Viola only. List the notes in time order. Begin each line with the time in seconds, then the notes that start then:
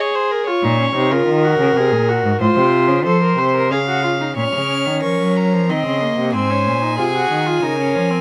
Already playing: G#4
0.47 F4
0.64 D#4
0.80 C#4
0.95 D#4
1.11 F4
1.44 F#4
1.77 G#4
2.09 F#4
2.41 F4
3.05 A4
3.22 A#4
3.38 C5
3.55 A#4
3.71 G#4
3.87 F#4
4.03 F4
4.21 D#4
4.36 C#4
5.68 C4
6.01 A#3
6.34 C4
6.50 C#4
6.82 D#4
6.98 F4
7.14 F#4
7.46 F4
7.63 D#4
7.78 C#4
8.10 C4